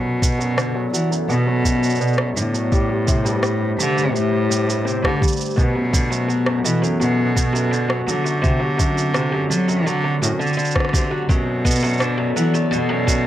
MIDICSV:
0, 0, Header, 1, 5, 480
1, 0, Start_track
1, 0, Tempo, 714286
1, 1826, Time_signature, 4, 2, 24, 8
1, 8916, End_track
2, 0, Start_track
2, 0, Title_t, "Ambient pad"
2, 0, Program_c, 0, 92
2, 0, Note_on_c, 0, 59, 82
2, 0, Note_on_c, 0, 69, 78
2, 0, Note_on_c, 0, 74, 88
2, 1807, Note_off_c, 0, 59, 0
2, 1807, Note_off_c, 0, 74, 0
2, 1809, Note_off_c, 0, 69, 0
2, 1820, Note_on_c, 0, 57, 76
2, 1821, Note_on_c, 0, 67, 72
2, 1824, Note_on_c, 0, 72, 86
2, 3724, Note_off_c, 0, 57, 0
2, 3725, Note_off_c, 0, 67, 0
2, 3726, Note_off_c, 0, 72, 0
2, 3750, Note_on_c, 0, 69, 86
2, 3751, Note_on_c, 0, 59, 76
2, 3752, Note_on_c, 0, 66, 75
2, 5649, Note_off_c, 0, 59, 0
2, 5649, Note_off_c, 0, 69, 0
2, 5671, Note_on_c, 0, 60, 73
2, 5675, Note_on_c, 0, 50, 81
2, 7562, Note_off_c, 0, 66, 0
2, 7570, Note_off_c, 0, 60, 0
2, 7572, Note_off_c, 0, 50, 0
2, 7589, Note_on_c, 0, 69, 74
2, 7590, Note_on_c, 0, 59, 78
2, 7590, Note_on_c, 0, 74, 87
2, 8916, Note_off_c, 0, 59, 0
2, 8916, Note_off_c, 0, 69, 0
2, 8916, Note_off_c, 0, 74, 0
2, 8916, End_track
3, 0, Start_track
3, 0, Title_t, "Cello"
3, 0, Program_c, 1, 42
3, 0, Note_on_c, 1, 47, 83
3, 584, Note_off_c, 1, 47, 0
3, 623, Note_on_c, 1, 52, 82
3, 717, Note_off_c, 1, 52, 0
3, 863, Note_on_c, 1, 47, 100
3, 1541, Note_off_c, 1, 47, 0
3, 1585, Note_on_c, 1, 45, 80
3, 2502, Note_off_c, 1, 45, 0
3, 2545, Note_on_c, 1, 50, 96
3, 2781, Note_on_c, 1, 45, 109
3, 2791, Note_off_c, 1, 50, 0
3, 3340, Note_off_c, 1, 45, 0
3, 3389, Note_on_c, 1, 50, 92
3, 3480, Note_off_c, 1, 50, 0
3, 3751, Note_on_c, 1, 47, 91
3, 4424, Note_off_c, 1, 47, 0
3, 4466, Note_on_c, 1, 52, 85
3, 4559, Note_off_c, 1, 52, 0
3, 4707, Note_on_c, 1, 47, 103
3, 5383, Note_off_c, 1, 47, 0
3, 5429, Note_on_c, 1, 50, 81
3, 6343, Note_off_c, 1, 50, 0
3, 6388, Note_on_c, 1, 54, 91
3, 6628, Note_on_c, 1, 50, 104
3, 6638, Note_off_c, 1, 54, 0
3, 6860, Note_off_c, 1, 50, 0
3, 6864, Note_on_c, 1, 45, 87
3, 6958, Note_off_c, 1, 45, 0
3, 6986, Note_on_c, 1, 50, 75
3, 7542, Note_off_c, 1, 50, 0
3, 7590, Note_on_c, 1, 47, 94
3, 8264, Note_off_c, 1, 47, 0
3, 8306, Note_on_c, 1, 52, 87
3, 8399, Note_off_c, 1, 52, 0
3, 8550, Note_on_c, 1, 47, 97
3, 8916, Note_off_c, 1, 47, 0
3, 8916, End_track
4, 0, Start_track
4, 0, Title_t, "Twelve-string acoustic guitar"
4, 0, Program_c, 2, 25
4, 0, Note_on_c, 2, 42, 74
4, 132, Note_off_c, 2, 42, 0
4, 144, Note_on_c, 2, 47, 64
4, 253, Note_off_c, 2, 47, 0
4, 260, Note_on_c, 2, 42, 71
4, 377, Note_off_c, 2, 42, 0
4, 383, Note_on_c, 2, 50, 67
4, 493, Note_off_c, 2, 50, 0
4, 501, Note_on_c, 2, 42, 73
4, 612, Note_off_c, 2, 42, 0
4, 624, Note_on_c, 2, 54, 74
4, 733, Note_off_c, 2, 54, 0
4, 745, Note_on_c, 2, 42, 67
4, 854, Note_off_c, 2, 42, 0
4, 867, Note_on_c, 2, 47, 85
4, 975, Note_off_c, 2, 47, 0
4, 985, Note_on_c, 2, 42, 95
4, 1094, Note_off_c, 2, 42, 0
4, 1104, Note_on_c, 2, 42, 72
4, 1333, Note_off_c, 2, 42, 0
4, 1345, Note_on_c, 2, 47, 73
4, 1454, Note_off_c, 2, 47, 0
4, 1469, Note_on_c, 2, 42, 68
4, 1582, Note_off_c, 2, 42, 0
4, 1589, Note_on_c, 2, 50, 69
4, 1696, Note_off_c, 2, 50, 0
4, 1706, Note_on_c, 2, 42, 68
4, 1814, Note_off_c, 2, 42, 0
4, 1826, Note_on_c, 2, 55, 76
4, 1934, Note_off_c, 2, 55, 0
4, 1941, Note_on_c, 2, 43, 64
4, 2052, Note_off_c, 2, 43, 0
4, 2062, Note_on_c, 2, 48, 89
4, 2172, Note_off_c, 2, 48, 0
4, 2180, Note_on_c, 2, 43, 91
4, 2291, Note_off_c, 2, 43, 0
4, 2301, Note_on_c, 2, 43, 70
4, 2532, Note_off_c, 2, 43, 0
4, 2545, Note_on_c, 2, 48, 74
4, 2654, Note_off_c, 2, 48, 0
4, 2662, Note_on_c, 2, 43, 73
4, 2778, Note_off_c, 2, 43, 0
4, 2784, Note_on_c, 2, 52, 71
4, 2893, Note_off_c, 2, 52, 0
4, 2900, Note_on_c, 2, 43, 67
4, 3012, Note_off_c, 2, 43, 0
4, 3021, Note_on_c, 2, 55, 73
4, 3132, Note_off_c, 2, 55, 0
4, 3142, Note_on_c, 2, 43, 71
4, 3252, Note_off_c, 2, 43, 0
4, 3258, Note_on_c, 2, 48, 91
4, 3370, Note_off_c, 2, 48, 0
4, 3376, Note_on_c, 2, 43, 91
4, 3489, Note_off_c, 2, 43, 0
4, 3497, Note_on_c, 2, 43, 67
4, 3730, Note_off_c, 2, 43, 0
4, 3736, Note_on_c, 2, 47, 83
4, 3849, Note_off_c, 2, 47, 0
4, 3863, Note_on_c, 2, 42, 68
4, 3979, Note_off_c, 2, 42, 0
4, 3981, Note_on_c, 2, 50, 70
4, 4092, Note_off_c, 2, 50, 0
4, 4101, Note_on_c, 2, 42, 72
4, 4212, Note_off_c, 2, 42, 0
4, 4221, Note_on_c, 2, 54, 73
4, 4332, Note_off_c, 2, 54, 0
4, 4342, Note_on_c, 2, 42, 74
4, 4452, Note_off_c, 2, 42, 0
4, 4464, Note_on_c, 2, 47, 93
4, 4573, Note_off_c, 2, 47, 0
4, 4582, Note_on_c, 2, 42, 96
4, 4692, Note_off_c, 2, 42, 0
4, 4701, Note_on_c, 2, 42, 76
4, 4932, Note_off_c, 2, 42, 0
4, 4943, Note_on_c, 2, 47, 75
4, 5053, Note_off_c, 2, 47, 0
4, 5058, Note_on_c, 2, 42, 74
4, 5176, Note_off_c, 2, 42, 0
4, 5181, Note_on_c, 2, 50, 75
4, 5292, Note_off_c, 2, 50, 0
4, 5297, Note_on_c, 2, 42, 74
4, 5410, Note_off_c, 2, 42, 0
4, 5419, Note_on_c, 2, 54, 68
4, 5531, Note_off_c, 2, 54, 0
4, 5536, Note_on_c, 2, 42, 73
4, 5649, Note_off_c, 2, 42, 0
4, 5656, Note_on_c, 2, 48, 97
4, 5770, Note_off_c, 2, 48, 0
4, 5774, Note_on_c, 2, 42, 89
4, 5886, Note_off_c, 2, 42, 0
4, 5894, Note_on_c, 2, 42, 68
4, 6128, Note_off_c, 2, 42, 0
4, 6138, Note_on_c, 2, 48, 73
4, 6251, Note_off_c, 2, 48, 0
4, 6262, Note_on_c, 2, 42, 65
4, 6378, Note_off_c, 2, 42, 0
4, 6383, Note_on_c, 2, 50, 70
4, 6493, Note_off_c, 2, 50, 0
4, 6504, Note_on_c, 2, 42, 71
4, 6613, Note_off_c, 2, 42, 0
4, 6627, Note_on_c, 2, 54, 77
4, 6735, Note_off_c, 2, 54, 0
4, 6746, Note_on_c, 2, 42, 71
4, 6854, Note_off_c, 2, 42, 0
4, 6866, Note_on_c, 2, 42, 68
4, 6974, Note_off_c, 2, 42, 0
4, 6984, Note_on_c, 2, 50, 68
4, 7093, Note_off_c, 2, 50, 0
4, 7103, Note_on_c, 2, 50, 79
4, 7219, Note_off_c, 2, 50, 0
4, 7343, Note_on_c, 2, 48, 67
4, 7453, Note_off_c, 2, 48, 0
4, 7464, Note_on_c, 2, 54, 73
4, 7573, Note_off_c, 2, 54, 0
4, 7585, Note_on_c, 2, 42, 72
4, 7814, Note_off_c, 2, 42, 0
4, 7826, Note_on_c, 2, 47, 71
4, 7934, Note_off_c, 2, 47, 0
4, 7948, Note_on_c, 2, 42, 72
4, 8061, Note_off_c, 2, 42, 0
4, 8063, Note_on_c, 2, 50, 69
4, 8173, Note_off_c, 2, 50, 0
4, 8181, Note_on_c, 2, 42, 65
4, 8292, Note_off_c, 2, 42, 0
4, 8305, Note_on_c, 2, 54, 69
4, 8414, Note_off_c, 2, 54, 0
4, 8425, Note_on_c, 2, 42, 70
4, 8534, Note_off_c, 2, 42, 0
4, 8540, Note_on_c, 2, 47, 93
4, 8651, Note_off_c, 2, 47, 0
4, 8661, Note_on_c, 2, 42, 88
4, 8772, Note_off_c, 2, 42, 0
4, 8782, Note_on_c, 2, 42, 74
4, 8916, Note_off_c, 2, 42, 0
4, 8916, End_track
5, 0, Start_track
5, 0, Title_t, "Drums"
5, 150, Note_on_c, 9, 36, 88
5, 155, Note_on_c, 9, 82, 72
5, 217, Note_off_c, 9, 36, 0
5, 222, Note_off_c, 9, 82, 0
5, 275, Note_on_c, 9, 82, 43
5, 342, Note_off_c, 9, 82, 0
5, 388, Note_on_c, 9, 37, 78
5, 395, Note_on_c, 9, 82, 28
5, 455, Note_off_c, 9, 37, 0
5, 462, Note_off_c, 9, 82, 0
5, 633, Note_on_c, 9, 82, 70
5, 700, Note_off_c, 9, 82, 0
5, 755, Note_on_c, 9, 82, 41
5, 822, Note_off_c, 9, 82, 0
5, 873, Note_on_c, 9, 82, 31
5, 940, Note_off_c, 9, 82, 0
5, 1110, Note_on_c, 9, 36, 61
5, 1112, Note_on_c, 9, 82, 71
5, 1177, Note_off_c, 9, 36, 0
5, 1180, Note_off_c, 9, 82, 0
5, 1232, Note_on_c, 9, 82, 37
5, 1274, Note_off_c, 9, 82, 0
5, 1274, Note_on_c, 9, 82, 33
5, 1311, Note_off_c, 9, 82, 0
5, 1311, Note_on_c, 9, 82, 26
5, 1351, Note_off_c, 9, 82, 0
5, 1351, Note_on_c, 9, 82, 31
5, 1393, Note_off_c, 9, 82, 0
5, 1393, Note_on_c, 9, 82, 16
5, 1431, Note_off_c, 9, 82, 0
5, 1431, Note_on_c, 9, 82, 14
5, 1465, Note_on_c, 9, 37, 74
5, 1498, Note_off_c, 9, 82, 0
5, 1532, Note_off_c, 9, 37, 0
5, 1592, Note_on_c, 9, 82, 69
5, 1659, Note_off_c, 9, 82, 0
5, 1710, Note_on_c, 9, 82, 41
5, 1778, Note_off_c, 9, 82, 0
5, 1830, Note_on_c, 9, 36, 107
5, 1831, Note_on_c, 9, 82, 33
5, 1897, Note_off_c, 9, 36, 0
5, 1898, Note_off_c, 9, 82, 0
5, 2069, Note_on_c, 9, 82, 70
5, 2070, Note_on_c, 9, 36, 97
5, 2136, Note_off_c, 9, 82, 0
5, 2138, Note_off_c, 9, 36, 0
5, 2190, Note_on_c, 9, 82, 41
5, 2258, Note_off_c, 9, 82, 0
5, 2303, Note_on_c, 9, 37, 70
5, 2310, Note_on_c, 9, 82, 30
5, 2371, Note_off_c, 9, 37, 0
5, 2377, Note_off_c, 9, 82, 0
5, 2552, Note_on_c, 9, 82, 76
5, 2619, Note_off_c, 9, 82, 0
5, 2674, Note_on_c, 9, 82, 41
5, 2741, Note_off_c, 9, 82, 0
5, 2794, Note_on_c, 9, 82, 33
5, 2861, Note_off_c, 9, 82, 0
5, 3034, Note_on_c, 9, 82, 70
5, 3101, Note_off_c, 9, 82, 0
5, 3157, Note_on_c, 9, 82, 44
5, 3224, Note_off_c, 9, 82, 0
5, 3276, Note_on_c, 9, 82, 32
5, 3343, Note_off_c, 9, 82, 0
5, 3388, Note_on_c, 9, 36, 60
5, 3392, Note_on_c, 9, 37, 76
5, 3455, Note_off_c, 9, 36, 0
5, 3459, Note_off_c, 9, 37, 0
5, 3508, Note_on_c, 9, 36, 109
5, 3516, Note_on_c, 9, 82, 71
5, 3546, Note_off_c, 9, 82, 0
5, 3546, Note_on_c, 9, 82, 57
5, 3575, Note_off_c, 9, 36, 0
5, 3576, Note_off_c, 9, 82, 0
5, 3576, Note_on_c, 9, 82, 46
5, 3606, Note_off_c, 9, 82, 0
5, 3606, Note_on_c, 9, 82, 35
5, 3633, Note_off_c, 9, 82, 0
5, 3633, Note_on_c, 9, 82, 42
5, 3664, Note_off_c, 9, 82, 0
5, 3664, Note_on_c, 9, 82, 25
5, 3696, Note_off_c, 9, 82, 0
5, 3696, Note_on_c, 9, 82, 20
5, 3724, Note_off_c, 9, 82, 0
5, 3724, Note_on_c, 9, 82, 17
5, 3748, Note_on_c, 9, 36, 106
5, 3753, Note_off_c, 9, 82, 0
5, 3753, Note_on_c, 9, 82, 30
5, 3816, Note_off_c, 9, 36, 0
5, 3820, Note_off_c, 9, 82, 0
5, 3988, Note_on_c, 9, 36, 97
5, 3992, Note_on_c, 9, 82, 75
5, 4056, Note_off_c, 9, 36, 0
5, 4059, Note_off_c, 9, 82, 0
5, 4113, Note_on_c, 9, 82, 43
5, 4180, Note_off_c, 9, 82, 0
5, 4232, Note_on_c, 9, 82, 31
5, 4299, Note_off_c, 9, 82, 0
5, 4344, Note_on_c, 9, 37, 69
5, 4411, Note_off_c, 9, 37, 0
5, 4471, Note_on_c, 9, 82, 77
5, 4538, Note_off_c, 9, 82, 0
5, 4596, Note_on_c, 9, 82, 40
5, 4663, Note_off_c, 9, 82, 0
5, 4713, Note_on_c, 9, 82, 37
5, 4781, Note_off_c, 9, 82, 0
5, 4950, Note_on_c, 9, 36, 67
5, 4953, Note_on_c, 9, 82, 74
5, 5017, Note_off_c, 9, 36, 0
5, 5020, Note_off_c, 9, 82, 0
5, 5078, Note_on_c, 9, 82, 45
5, 5146, Note_off_c, 9, 82, 0
5, 5196, Note_on_c, 9, 82, 33
5, 5263, Note_off_c, 9, 82, 0
5, 5308, Note_on_c, 9, 37, 70
5, 5375, Note_off_c, 9, 37, 0
5, 5433, Note_on_c, 9, 82, 71
5, 5500, Note_off_c, 9, 82, 0
5, 5551, Note_on_c, 9, 82, 42
5, 5619, Note_off_c, 9, 82, 0
5, 5671, Note_on_c, 9, 36, 117
5, 5672, Note_on_c, 9, 82, 31
5, 5738, Note_off_c, 9, 36, 0
5, 5739, Note_off_c, 9, 82, 0
5, 5911, Note_on_c, 9, 36, 101
5, 5911, Note_on_c, 9, 82, 70
5, 5978, Note_off_c, 9, 36, 0
5, 5978, Note_off_c, 9, 82, 0
5, 6034, Note_on_c, 9, 82, 43
5, 6101, Note_off_c, 9, 82, 0
5, 6145, Note_on_c, 9, 37, 70
5, 6151, Note_on_c, 9, 82, 31
5, 6212, Note_off_c, 9, 37, 0
5, 6218, Note_off_c, 9, 82, 0
5, 6393, Note_on_c, 9, 82, 74
5, 6461, Note_off_c, 9, 82, 0
5, 6511, Note_on_c, 9, 82, 41
5, 6579, Note_off_c, 9, 82, 0
5, 6634, Note_on_c, 9, 82, 35
5, 6701, Note_off_c, 9, 82, 0
5, 6874, Note_on_c, 9, 82, 77
5, 6941, Note_off_c, 9, 82, 0
5, 6996, Note_on_c, 9, 82, 19
5, 7034, Note_off_c, 9, 82, 0
5, 7034, Note_on_c, 9, 82, 23
5, 7077, Note_off_c, 9, 82, 0
5, 7077, Note_on_c, 9, 82, 26
5, 7115, Note_off_c, 9, 82, 0
5, 7115, Note_on_c, 9, 82, 31
5, 7156, Note_off_c, 9, 82, 0
5, 7156, Note_on_c, 9, 82, 33
5, 7195, Note_off_c, 9, 82, 0
5, 7195, Note_on_c, 9, 82, 37
5, 7228, Note_on_c, 9, 37, 64
5, 7231, Note_on_c, 9, 36, 60
5, 7260, Note_off_c, 9, 37, 0
5, 7260, Note_on_c, 9, 37, 55
5, 7263, Note_off_c, 9, 82, 0
5, 7289, Note_off_c, 9, 37, 0
5, 7289, Note_on_c, 9, 37, 49
5, 7298, Note_off_c, 9, 36, 0
5, 7318, Note_off_c, 9, 37, 0
5, 7318, Note_on_c, 9, 37, 37
5, 7350, Note_off_c, 9, 37, 0
5, 7350, Note_on_c, 9, 36, 109
5, 7350, Note_on_c, 9, 37, 28
5, 7356, Note_on_c, 9, 82, 75
5, 7377, Note_off_c, 9, 37, 0
5, 7377, Note_on_c, 9, 37, 23
5, 7407, Note_off_c, 9, 37, 0
5, 7407, Note_on_c, 9, 37, 20
5, 7417, Note_off_c, 9, 36, 0
5, 7423, Note_off_c, 9, 82, 0
5, 7438, Note_off_c, 9, 37, 0
5, 7438, Note_on_c, 9, 37, 15
5, 7505, Note_off_c, 9, 37, 0
5, 7589, Note_on_c, 9, 36, 102
5, 7595, Note_on_c, 9, 82, 29
5, 7656, Note_off_c, 9, 36, 0
5, 7662, Note_off_c, 9, 82, 0
5, 7829, Note_on_c, 9, 36, 87
5, 7836, Note_on_c, 9, 82, 67
5, 7867, Note_off_c, 9, 82, 0
5, 7867, Note_on_c, 9, 82, 58
5, 7896, Note_off_c, 9, 36, 0
5, 7897, Note_off_c, 9, 82, 0
5, 7897, Note_on_c, 9, 82, 47
5, 7927, Note_off_c, 9, 82, 0
5, 7927, Note_on_c, 9, 82, 37
5, 7957, Note_off_c, 9, 82, 0
5, 7957, Note_on_c, 9, 82, 39
5, 7986, Note_off_c, 9, 82, 0
5, 7986, Note_on_c, 9, 82, 25
5, 8017, Note_off_c, 9, 82, 0
5, 8017, Note_on_c, 9, 82, 19
5, 8046, Note_off_c, 9, 82, 0
5, 8046, Note_on_c, 9, 82, 16
5, 8066, Note_on_c, 9, 37, 70
5, 8072, Note_off_c, 9, 82, 0
5, 8072, Note_on_c, 9, 82, 28
5, 8133, Note_off_c, 9, 37, 0
5, 8140, Note_off_c, 9, 82, 0
5, 8313, Note_on_c, 9, 82, 69
5, 8380, Note_off_c, 9, 82, 0
5, 8430, Note_on_c, 9, 82, 40
5, 8498, Note_off_c, 9, 82, 0
5, 8552, Note_on_c, 9, 82, 33
5, 8619, Note_off_c, 9, 82, 0
5, 8788, Note_on_c, 9, 36, 57
5, 8792, Note_on_c, 9, 82, 69
5, 8855, Note_off_c, 9, 36, 0
5, 8859, Note_off_c, 9, 82, 0
5, 8916, End_track
0, 0, End_of_file